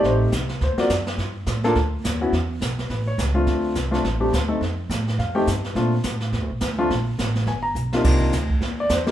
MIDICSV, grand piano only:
0, 0, Header, 1, 2, 480
1, 0, Start_track
1, 0, Key_signature, -2, "major"
1, 0, Tempo, 285850
1, 54, Time_signature, 4, 2, 24, 8
1, 15303, End_track
2, 0, Start_track
2, 0, Title_t, "Grand piano"
2, 0, Program_c, 0, 0
2, 0, Note_on_c, 0, 57, 72
2, 0, Note_on_c, 0, 60, 60
2, 0, Note_on_c, 0, 63, 64
2, 0, Note_on_c, 0, 67, 81
2, 91, Note_on_c, 0, 72, 79
2, 249, Note_off_c, 0, 72, 0
2, 504, Note_off_c, 0, 60, 0
2, 505, Note_off_c, 0, 57, 0
2, 506, Note_off_c, 0, 63, 0
2, 510, Note_off_c, 0, 67, 0
2, 1065, Note_on_c, 0, 72, 68
2, 1306, Note_on_c, 0, 58, 64
2, 1308, Note_on_c, 0, 66, 78
2, 1311, Note_on_c, 0, 60, 56
2, 1315, Note_off_c, 0, 72, 0
2, 1315, Note_on_c, 0, 65, 57
2, 1334, Note_on_c, 0, 74, 84
2, 1480, Note_off_c, 0, 58, 0
2, 1481, Note_off_c, 0, 66, 0
2, 1483, Note_off_c, 0, 60, 0
2, 1485, Note_off_c, 0, 65, 0
2, 1509, Note_off_c, 0, 74, 0
2, 2759, Note_on_c, 0, 58, 86
2, 2761, Note_on_c, 0, 69, 87
2, 2764, Note_on_c, 0, 62, 76
2, 2777, Note_on_c, 0, 65, 78
2, 2928, Note_off_c, 0, 58, 0
2, 2929, Note_off_c, 0, 69, 0
2, 2930, Note_off_c, 0, 62, 0
2, 2937, Note_off_c, 0, 65, 0
2, 3711, Note_on_c, 0, 61, 67
2, 3723, Note_on_c, 0, 66, 81
2, 3725, Note_on_c, 0, 59, 77
2, 3734, Note_on_c, 0, 64, 63
2, 3885, Note_off_c, 0, 61, 0
2, 3891, Note_off_c, 0, 66, 0
2, 3892, Note_off_c, 0, 59, 0
2, 3896, Note_off_c, 0, 64, 0
2, 4886, Note_on_c, 0, 71, 61
2, 5149, Note_off_c, 0, 71, 0
2, 5164, Note_on_c, 0, 73, 77
2, 5347, Note_off_c, 0, 73, 0
2, 5611, Note_on_c, 0, 57, 63
2, 5613, Note_on_c, 0, 62, 58
2, 5617, Note_on_c, 0, 60, 62
2, 5622, Note_on_c, 0, 65, 83
2, 6259, Note_off_c, 0, 57, 0
2, 6259, Note_off_c, 0, 62, 0
2, 6262, Note_off_c, 0, 60, 0
2, 6264, Note_off_c, 0, 65, 0
2, 6567, Note_on_c, 0, 57, 68
2, 6573, Note_on_c, 0, 60, 67
2, 6576, Note_on_c, 0, 65, 76
2, 6584, Note_on_c, 0, 62, 65
2, 6756, Note_off_c, 0, 57, 0
2, 6759, Note_off_c, 0, 60, 0
2, 6761, Note_off_c, 0, 65, 0
2, 6765, Note_off_c, 0, 62, 0
2, 7053, Note_on_c, 0, 60, 60
2, 7057, Note_on_c, 0, 57, 60
2, 7058, Note_on_c, 0, 62, 51
2, 7063, Note_on_c, 0, 67, 73
2, 7239, Note_off_c, 0, 60, 0
2, 7242, Note_off_c, 0, 57, 0
2, 7242, Note_off_c, 0, 62, 0
2, 7244, Note_off_c, 0, 67, 0
2, 7527, Note_on_c, 0, 57, 67
2, 7532, Note_on_c, 0, 69, 70
2, 7533, Note_on_c, 0, 60, 56
2, 7535, Note_on_c, 0, 63, 61
2, 7717, Note_off_c, 0, 57, 0
2, 7720, Note_off_c, 0, 60, 0
2, 7720, Note_off_c, 0, 69, 0
2, 7721, Note_off_c, 0, 63, 0
2, 8713, Note_on_c, 0, 77, 69
2, 8980, Note_on_c, 0, 57, 75
2, 8985, Note_off_c, 0, 77, 0
2, 8987, Note_on_c, 0, 60, 62
2, 8987, Note_on_c, 0, 79, 78
2, 8994, Note_on_c, 0, 67, 79
2, 8998, Note_on_c, 0, 63, 61
2, 9164, Note_off_c, 0, 57, 0
2, 9168, Note_off_c, 0, 60, 0
2, 9171, Note_off_c, 0, 67, 0
2, 9173, Note_off_c, 0, 63, 0
2, 9181, Note_off_c, 0, 79, 0
2, 9662, Note_on_c, 0, 60, 58
2, 9669, Note_on_c, 0, 57, 62
2, 9671, Note_on_c, 0, 65, 74
2, 9684, Note_on_c, 0, 62, 53
2, 9920, Note_off_c, 0, 60, 0
2, 9924, Note_off_c, 0, 57, 0
2, 9924, Note_off_c, 0, 65, 0
2, 9931, Note_off_c, 0, 62, 0
2, 11394, Note_on_c, 0, 65, 90
2, 11395, Note_on_c, 0, 57, 74
2, 11395, Note_on_c, 0, 60, 62
2, 11398, Note_on_c, 0, 62, 67
2, 11571, Note_off_c, 0, 57, 0
2, 11571, Note_off_c, 0, 60, 0
2, 11571, Note_off_c, 0, 65, 0
2, 11573, Note_off_c, 0, 62, 0
2, 12555, Note_on_c, 0, 80, 78
2, 12805, Note_on_c, 0, 82, 86
2, 12824, Note_off_c, 0, 80, 0
2, 12930, Note_off_c, 0, 82, 0
2, 13329, Note_on_c, 0, 65, 78
2, 13334, Note_on_c, 0, 48, 64
2, 13334, Note_on_c, 0, 62, 62
2, 13337, Note_on_c, 0, 58, 58
2, 13342, Note_on_c, 0, 63, 60
2, 13954, Note_off_c, 0, 65, 0
2, 13956, Note_off_c, 0, 62, 0
2, 13957, Note_off_c, 0, 48, 0
2, 13958, Note_off_c, 0, 58, 0
2, 13961, Note_off_c, 0, 63, 0
2, 14779, Note_on_c, 0, 74, 89
2, 14952, Note_off_c, 0, 74, 0
2, 14974, Note_on_c, 0, 72, 67
2, 15222, Note_on_c, 0, 58, 66
2, 15230, Note_off_c, 0, 72, 0
2, 15231, Note_on_c, 0, 63, 60
2, 15234, Note_on_c, 0, 60, 56
2, 15234, Note_on_c, 0, 67, 74
2, 15303, Note_off_c, 0, 58, 0
2, 15303, Note_off_c, 0, 60, 0
2, 15303, Note_off_c, 0, 63, 0
2, 15303, Note_off_c, 0, 67, 0
2, 15303, End_track
0, 0, End_of_file